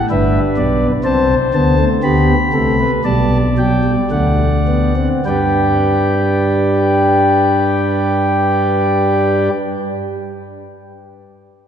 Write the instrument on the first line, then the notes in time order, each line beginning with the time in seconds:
pipe organ
0.10 G1 G2 D4 B4 E5
0.57 B1 B2 D5
1.04 C2 C3 C4 C5 A5
1.54 D2 D3 B3 A5
1.79 A3
2.03 D2 D3 B3 G4 B5
2.53 C2 C3 A3 A4
2.80 B4
3.04 B1 B2 G3 D5 A5
3.58 F#3 G5
3.84 G3
4.11 D2 D3 A3 F#5
4.68 B3
4.96 C4
5.25 G2 G3 D4 G4 B4 D5 G5